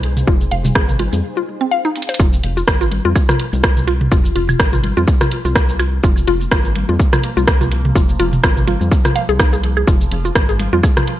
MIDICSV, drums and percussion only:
0, 0, Header, 1, 2, 480
1, 0, Start_track
1, 0, Key_signature, -4, "minor"
1, 0, Tempo, 480000
1, 275, Time_signature, 4, 2, 24, 8
1, 11198, End_track
2, 0, Start_track
2, 0, Title_t, "Drums"
2, 34, Note_on_c, 9, 42, 85
2, 134, Note_off_c, 9, 42, 0
2, 168, Note_on_c, 9, 47, 80
2, 168, Note_on_c, 9, 82, 53
2, 268, Note_off_c, 9, 47, 0
2, 268, Note_off_c, 9, 82, 0
2, 275, Note_on_c, 9, 36, 112
2, 375, Note_off_c, 9, 36, 0
2, 408, Note_on_c, 9, 82, 30
2, 508, Note_off_c, 9, 82, 0
2, 514, Note_on_c, 9, 42, 85
2, 614, Note_off_c, 9, 42, 0
2, 648, Note_on_c, 9, 47, 80
2, 648, Note_on_c, 9, 48, 49
2, 648, Note_on_c, 9, 82, 54
2, 748, Note_off_c, 9, 47, 0
2, 748, Note_off_c, 9, 48, 0
2, 748, Note_off_c, 9, 82, 0
2, 754, Note_on_c, 9, 37, 90
2, 755, Note_on_c, 9, 36, 113
2, 755, Note_on_c, 9, 76, 68
2, 854, Note_off_c, 9, 37, 0
2, 855, Note_off_c, 9, 36, 0
2, 855, Note_off_c, 9, 76, 0
2, 888, Note_on_c, 9, 82, 31
2, 889, Note_on_c, 9, 47, 77
2, 988, Note_off_c, 9, 82, 0
2, 989, Note_off_c, 9, 47, 0
2, 994, Note_on_c, 9, 42, 86
2, 995, Note_on_c, 9, 48, 52
2, 1094, Note_off_c, 9, 42, 0
2, 1095, Note_off_c, 9, 48, 0
2, 1128, Note_on_c, 9, 42, 35
2, 1128, Note_on_c, 9, 82, 53
2, 1129, Note_on_c, 9, 48, 54
2, 1228, Note_off_c, 9, 42, 0
2, 1228, Note_off_c, 9, 82, 0
2, 1229, Note_off_c, 9, 48, 0
2, 1956, Note_on_c, 9, 42, 53
2, 2022, Note_off_c, 9, 42, 0
2, 2022, Note_on_c, 9, 42, 61
2, 2090, Note_off_c, 9, 42, 0
2, 2090, Note_on_c, 9, 42, 74
2, 2142, Note_off_c, 9, 42, 0
2, 2142, Note_on_c, 9, 42, 82
2, 2196, Note_on_c, 9, 36, 123
2, 2196, Note_on_c, 9, 82, 66
2, 2242, Note_off_c, 9, 42, 0
2, 2296, Note_off_c, 9, 36, 0
2, 2296, Note_off_c, 9, 82, 0
2, 2330, Note_on_c, 9, 82, 43
2, 2430, Note_off_c, 9, 82, 0
2, 2435, Note_on_c, 9, 42, 94
2, 2535, Note_off_c, 9, 42, 0
2, 2570, Note_on_c, 9, 82, 31
2, 2670, Note_off_c, 9, 82, 0
2, 2676, Note_on_c, 9, 36, 118
2, 2676, Note_on_c, 9, 37, 97
2, 2676, Note_on_c, 9, 82, 67
2, 2776, Note_off_c, 9, 36, 0
2, 2776, Note_off_c, 9, 37, 0
2, 2776, Note_off_c, 9, 82, 0
2, 2810, Note_on_c, 9, 82, 44
2, 2910, Note_off_c, 9, 82, 0
2, 2916, Note_on_c, 9, 42, 92
2, 2916, Note_on_c, 9, 48, 58
2, 3016, Note_off_c, 9, 42, 0
2, 3016, Note_off_c, 9, 48, 0
2, 3050, Note_on_c, 9, 48, 57
2, 3150, Note_off_c, 9, 48, 0
2, 3155, Note_on_c, 9, 76, 68
2, 3156, Note_on_c, 9, 36, 116
2, 3156, Note_on_c, 9, 82, 65
2, 3255, Note_off_c, 9, 76, 0
2, 3256, Note_off_c, 9, 36, 0
2, 3256, Note_off_c, 9, 82, 0
2, 3290, Note_on_c, 9, 37, 63
2, 3290, Note_on_c, 9, 47, 100
2, 3290, Note_on_c, 9, 82, 44
2, 3390, Note_off_c, 9, 37, 0
2, 3390, Note_off_c, 9, 47, 0
2, 3390, Note_off_c, 9, 82, 0
2, 3396, Note_on_c, 9, 42, 92
2, 3496, Note_off_c, 9, 42, 0
2, 3530, Note_on_c, 9, 48, 72
2, 3530, Note_on_c, 9, 82, 30
2, 3630, Note_off_c, 9, 48, 0
2, 3630, Note_off_c, 9, 82, 0
2, 3636, Note_on_c, 9, 36, 118
2, 3636, Note_on_c, 9, 37, 94
2, 3636, Note_on_c, 9, 82, 66
2, 3736, Note_off_c, 9, 36, 0
2, 3736, Note_off_c, 9, 37, 0
2, 3736, Note_off_c, 9, 82, 0
2, 3770, Note_on_c, 9, 47, 84
2, 3770, Note_on_c, 9, 82, 47
2, 3870, Note_off_c, 9, 47, 0
2, 3870, Note_off_c, 9, 82, 0
2, 3877, Note_on_c, 9, 42, 92
2, 3977, Note_off_c, 9, 42, 0
2, 4010, Note_on_c, 9, 47, 87
2, 4110, Note_off_c, 9, 47, 0
2, 4116, Note_on_c, 9, 36, 125
2, 4117, Note_on_c, 9, 82, 65
2, 4216, Note_off_c, 9, 36, 0
2, 4217, Note_off_c, 9, 82, 0
2, 4252, Note_on_c, 9, 82, 43
2, 4352, Note_off_c, 9, 82, 0
2, 4356, Note_on_c, 9, 42, 96
2, 4456, Note_off_c, 9, 42, 0
2, 4490, Note_on_c, 9, 47, 81
2, 4490, Note_on_c, 9, 76, 67
2, 4490, Note_on_c, 9, 82, 30
2, 4590, Note_off_c, 9, 47, 0
2, 4590, Note_off_c, 9, 76, 0
2, 4590, Note_off_c, 9, 82, 0
2, 4596, Note_on_c, 9, 36, 124
2, 4596, Note_on_c, 9, 37, 98
2, 4596, Note_on_c, 9, 82, 65
2, 4696, Note_off_c, 9, 36, 0
2, 4696, Note_off_c, 9, 37, 0
2, 4696, Note_off_c, 9, 82, 0
2, 4729, Note_on_c, 9, 47, 83
2, 4730, Note_on_c, 9, 82, 43
2, 4829, Note_off_c, 9, 47, 0
2, 4830, Note_off_c, 9, 82, 0
2, 4835, Note_on_c, 9, 48, 57
2, 4836, Note_on_c, 9, 42, 96
2, 4935, Note_off_c, 9, 48, 0
2, 4936, Note_off_c, 9, 42, 0
2, 4970, Note_on_c, 9, 48, 59
2, 4970, Note_on_c, 9, 82, 30
2, 5070, Note_off_c, 9, 48, 0
2, 5070, Note_off_c, 9, 82, 0
2, 5076, Note_on_c, 9, 36, 121
2, 5076, Note_on_c, 9, 82, 61
2, 5176, Note_off_c, 9, 36, 0
2, 5176, Note_off_c, 9, 82, 0
2, 5209, Note_on_c, 9, 47, 94
2, 5210, Note_on_c, 9, 37, 63
2, 5210, Note_on_c, 9, 42, 39
2, 5210, Note_on_c, 9, 82, 43
2, 5309, Note_off_c, 9, 47, 0
2, 5310, Note_off_c, 9, 37, 0
2, 5310, Note_off_c, 9, 42, 0
2, 5310, Note_off_c, 9, 82, 0
2, 5316, Note_on_c, 9, 42, 97
2, 5416, Note_off_c, 9, 42, 0
2, 5450, Note_on_c, 9, 82, 30
2, 5550, Note_off_c, 9, 82, 0
2, 5555, Note_on_c, 9, 37, 96
2, 5555, Note_on_c, 9, 82, 66
2, 5556, Note_on_c, 9, 36, 125
2, 5655, Note_off_c, 9, 37, 0
2, 5655, Note_off_c, 9, 82, 0
2, 5656, Note_off_c, 9, 36, 0
2, 5689, Note_on_c, 9, 82, 44
2, 5789, Note_off_c, 9, 82, 0
2, 5795, Note_on_c, 9, 76, 66
2, 5796, Note_on_c, 9, 42, 95
2, 5895, Note_off_c, 9, 42, 0
2, 5895, Note_off_c, 9, 76, 0
2, 6035, Note_on_c, 9, 82, 62
2, 6036, Note_on_c, 9, 36, 126
2, 6135, Note_off_c, 9, 36, 0
2, 6135, Note_off_c, 9, 82, 0
2, 6170, Note_on_c, 9, 82, 41
2, 6270, Note_off_c, 9, 82, 0
2, 6275, Note_on_c, 9, 42, 96
2, 6375, Note_off_c, 9, 42, 0
2, 6409, Note_on_c, 9, 82, 29
2, 6509, Note_off_c, 9, 82, 0
2, 6515, Note_on_c, 9, 37, 98
2, 6515, Note_on_c, 9, 82, 62
2, 6516, Note_on_c, 9, 36, 127
2, 6615, Note_off_c, 9, 37, 0
2, 6615, Note_off_c, 9, 82, 0
2, 6616, Note_off_c, 9, 36, 0
2, 6650, Note_on_c, 9, 82, 42
2, 6749, Note_off_c, 9, 82, 0
2, 6755, Note_on_c, 9, 48, 57
2, 6756, Note_on_c, 9, 42, 96
2, 6855, Note_off_c, 9, 48, 0
2, 6856, Note_off_c, 9, 42, 0
2, 6889, Note_on_c, 9, 48, 62
2, 6989, Note_off_c, 9, 48, 0
2, 6995, Note_on_c, 9, 36, 121
2, 6996, Note_on_c, 9, 82, 61
2, 7095, Note_off_c, 9, 36, 0
2, 7096, Note_off_c, 9, 82, 0
2, 7129, Note_on_c, 9, 37, 63
2, 7129, Note_on_c, 9, 47, 98
2, 7129, Note_on_c, 9, 76, 64
2, 7129, Note_on_c, 9, 82, 40
2, 7229, Note_off_c, 9, 37, 0
2, 7229, Note_off_c, 9, 47, 0
2, 7229, Note_off_c, 9, 76, 0
2, 7229, Note_off_c, 9, 82, 0
2, 7235, Note_on_c, 9, 42, 97
2, 7335, Note_off_c, 9, 42, 0
2, 7369, Note_on_c, 9, 48, 72
2, 7370, Note_on_c, 9, 82, 29
2, 7469, Note_off_c, 9, 48, 0
2, 7470, Note_off_c, 9, 82, 0
2, 7475, Note_on_c, 9, 36, 123
2, 7476, Note_on_c, 9, 37, 96
2, 7476, Note_on_c, 9, 82, 63
2, 7575, Note_off_c, 9, 36, 0
2, 7576, Note_off_c, 9, 37, 0
2, 7576, Note_off_c, 9, 82, 0
2, 7610, Note_on_c, 9, 47, 83
2, 7610, Note_on_c, 9, 82, 43
2, 7709, Note_off_c, 9, 47, 0
2, 7710, Note_off_c, 9, 82, 0
2, 7716, Note_on_c, 9, 42, 93
2, 7816, Note_off_c, 9, 42, 0
2, 7849, Note_on_c, 9, 47, 89
2, 7950, Note_off_c, 9, 47, 0
2, 7955, Note_on_c, 9, 36, 122
2, 7956, Note_on_c, 9, 82, 62
2, 8055, Note_off_c, 9, 36, 0
2, 8056, Note_off_c, 9, 82, 0
2, 8091, Note_on_c, 9, 82, 40
2, 8191, Note_off_c, 9, 82, 0
2, 8196, Note_on_c, 9, 42, 95
2, 8296, Note_off_c, 9, 42, 0
2, 8329, Note_on_c, 9, 47, 79
2, 8331, Note_on_c, 9, 82, 30
2, 8429, Note_off_c, 9, 47, 0
2, 8431, Note_off_c, 9, 82, 0
2, 8435, Note_on_c, 9, 36, 124
2, 8435, Note_on_c, 9, 76, 64
2, 8437, Note_on_c, 9, 37, 95
2, 8437, Note_on_c, 9, 82, 63
2, 8535, Note_off_c, 9, 36, 0
2, 8535, Note_off_c, 9, 76, 0
2, 8537, Note_off_c, 9, 37, 0
2, 8537, Note_off_c, 9, 82, 0
2, 8569, Note_on_c, 9, 47, 78
2, 8570, Note_on_c, 9, 82, 41
2, 8669, Note_off_c, 9, 47, 0
2, 8670, Note_off_c, 9, 82, 0
2, 8675, Note_on_c, 9, 48, 57
2, 8676, Note_on_c, 9, 42, 93
2, 8775, Note_off_c, 9, 48, 0
2, 8776, Note_off_c, 9, 42, 0
2, 8809, Note_on_c, 9, 48, 59
2, 8811, Note_on_c, 9, 82, 27
2, 8909, Note_off_c, 9, 48, 0
2, 8911, Note_off_c, 9, 82, 0
2, 8915, Note_on_c, 9, 36, 118
2, 8917, Note_on_c, 9, 82, 57
2, 9015, Note_off_c, 9, 36, 0
2, 9017, Note_off_c, 9, 82, 0
2, 9049, Note_on_c, 9, 47, 91
2, 9051, Note_on_c, 9, 37, 59
2, 9051, Note_on_c, 9, 42, 38
2, 9051, Note_on_c, 9, 82, 41
2, 9149, Note_off_c, 9, 47, 0
2, 9151, Note_off_c, 9, 37, 0
2, 9151, Note_off_c, 9, 42, 0
2, 9151, Note_off_c, 9, 82, 0
2, 9157, Note_on_c, 9, 42, 94
2, 9257, Note_off_c, 9, 42, 0
2, 9291, Note_on_c, 9, 82, 28
2, 9391, Note_off_c, 9, 82, 0
2, 9395, Note_on_c, 9, 36, 123
2, 9396, Note_on_c, 9, 37, 90
2, 9396, Note_on_c, 9, 82, 62
2, 9495, Note_off_c, 9, 36, 0
2, 9496, Note_off_c, 9, 37, 0
2, 9496, Note_off_c, 9, 82, 0
2, 9530, Note_on_c, 9, 82, 42
2, 9630, Note_off_c, 9, 82, 0
2, 9635, Note_on_c, 9, 42, 95
2, 9735, Note_off_c, 9, 42, 0
2, 9769, Note_on_c, 9, 76, 62
2, 9869, Note_off_c, 9, 76, 0
2, 9875, Note_on_c, 9, 36, 120
2, 9875, Note_on_c, 9, 82, 63
2, 9975, Note_off_c, 9, 36, 0
2, 9975, Note_off_c, 9, 82, 0
2, 10009, Note_on_c, 9, 82, 40
2, 10109, Note_off_c, 9, 82, 0
2, 10116, Note_on_c, 9, 42, 92
2, 10216, Note_off_c, 9, 42, 0
2, 10249, Note_on_c, 9, 82, 29
2, 10349, Note_off_c, 9, 82, 0
2, 10355, Note_on_c, 9, 36, 117
2, 10355, Note_on_c, 9, 37, 90
2, 10355, Note_on_c, 9, 82, 64
2, 10455, Note_off_c, 9, 36, 0
2, 10455, Note_off_c, 9, 37, 0
2, 10455, Note_off_c, 9, 82, 0
2, 10490, Note_on_c, 9, 82, 40
2, 10590, Note_off_c, 9, 82, 0
2, 10595, Note_on_c, 9, 42, 96
2, 10595, Note_on_c, 9, 48, 56
2, 10695, Note_off_c, 9, 42, 0
2, 10695, Note_off_c, 9, 48, 0
2, 10729, Note_on_c, 9, 48, 58
2, 10829, Note_off_c, 9, 48, 0
2, 10835, Note_on_c, 9, 36, 116
2, 10835, Note_on_c, 9, 76, 64
2, 10835, Note_on_c, 9, 82, 61
2, 10935, Note_off_c, 9, 36, 0
2, 10935, Note_off_c, 9, 76, 0
2, 10935, Note_off_c, 9, 82, 0
2, 10968, Note_on_c, 9, 47, 87
2, 10970, Note_on_c, 9, 37, 59
2, 10970, Note_on_c, 9, 82, 41
2, 11068, Note_off_c, 9, 47, 0
2, 11070, Note_off_c, 9, 37, 0
2, 11070, Note_off_c, 9, 82, 0
2, 11075, Note_on_c, 9, 42, 91
2, 11175, Note_off_c, 9, 42, 0
2, 11198, End_track
0, 0, End_of_file